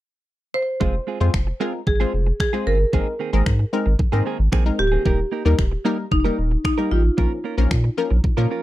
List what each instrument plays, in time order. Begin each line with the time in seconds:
0.54 marimba C5
0.80 sub bass F1, clean electric guitar G#3 C4 F4 G#4, synth stab G#3 C4 F4 C5, kick
1.07 clean electric guitar G#3 C4 F4 G#4
1.20 sub bass F2, synth stab G#3 C4 F4 C5, clean electric guitar G#3 C4 F4 G#4
1.34 sub bass F1, finger snap, kick
1.47 muted clean electric guitar stroke
1.60 clean electric guitar G#3 C4 F4 G#4, synth stab G#3 C4 F4 A#4
1.73 muted clean electric guitar stroke
1.87 sub bass G#1, marimba G#4, muted clean electric guitar stroke, kick
2.00 synth stab G#3 C4 F4 C5, clean electric guitar G#3 C4 F4 G#4
2.14 sub bass F1
2.27 muted clean electric guitar stroke
2.40 marimba G#4, finger snap, muted clean electric guitar stroke, kick
2.53 synth stab G#3 C4 F4 C5, clean electric guitar G#3 C4 F4 G#4
2.66 sub bass G1, clean electric guitar G#3 C4 F4 G#4, marimba A#4
2.80 muted clean electric guitar stroke
2.93 sub bass G#1, clean electric guitar D#3 A#3 C4 G#4, synth stab G#3 C4 D#4 A#4, kick
3.19 clean electric guitar D#3 A#3 C4 G#4
3.33 sub bass G#1, clean electric guitar D#3 A#3 C4 G#4, synth stab G#3 C4 D#4 A#4
3.46 sub bass G#2, finger snap, kick
3.59 muted clean electric guitar stroke
3.73 synth stab G#3 C4 D#4 A#4
3.86 sub bass G#1, muted clean electric guitar stroke
3.99 sub bass G#2, muted clean electric guitar stroke, kick
4.12 sub bass G#2, clean electric guitar D#3 A#3 C4 G#4, synth stab G#3 C4 D#4 A#4
4.25 clean electric guitar D#3 A#3 C4 G#4
4.39 sub bass G#1
4.52 sub bass A#1, clean electric guitar D#3 A#3 C4 G#4, finger snap, kick
4.65 synth stab G#3 C4 D#4 A#4, muted clean electric guitar stroke
4.79 sub bass D1, marimba G4, muted clean electric guitar stroke
4.92 clean electric guitar D#3 A#3 C4 G#4
5.05 sub bass D#1, synth stab G3 A#3 D#4 A#4, clean electric guitar A#3 D#4 G4 A#4, kick
5.32 clean electric guitar A#3 D#4 G4 A#4
5.45 sub bass D#2, synth stab G3 A#3 D#4 A#4, clean electric guitar D#4 G4 A#4
5.59 sub bass D#1, finger snap, muted clean electric guitar stroke, kick
5.72 muted clean electric guitar stroke
5.85 synth stab G3 A#3 D#4 A#4, clean electric guitar A#3 D#4 G4 A#4
5.98 muted clean electric guitar stroke
6.11 sub bass F1, marimba D#4, muted clean electric guitar stroke, kick
6.24 synth stab G3 A#3 D#4 A#4, clean electric guitar A#3 D#4 G4 A#4
6.38 sub bass D#1, muted clean electric guitar stroke
6.51 muted clean electric guitar stroke
6.65 marimba D#4, finger snap, muted clean electric guitar stroke, kick
6.78 synth stab G3 A#3 D#4 A#4, clean electric guitar A#3 D#4 G4 A#4
6.91 sub bass A1, clean electric guitar A#3 D#4 G4 A#4, marimba F4
7.04 muted clean electric guitar stroke
7.17 sub bass A#1, synth stab F3 A#3 C#4 A#4, clean electric guitar A#3 C#4 F4 A#4, kick
7.44 clean electric guitar A#3 C#4 F4 A#4
7.57 sub bass A#1, synth stab F3 A#3 C#4 A#4, clean electric guitar A#3 C#4 F4 A#4
7.71 sub bass A#2, finger snap, muted clean electric guitar stroke, kick
7.84 muted clean electric guitar stroke
7.97 synth stab F3 A#3 C#4 A#4
8.11 sub bass A#1, muted clean electric guitar stroke
8.24 sub bass A#2, muted clean electric guitar stroke, kick
8.37 sub bass A#2, synth stab F3 A#3 C#4 A#4, clean electric guitar A#3 C#4 F4 A#4
8.50 clean electric guitar A#3 C#4 F4 A#4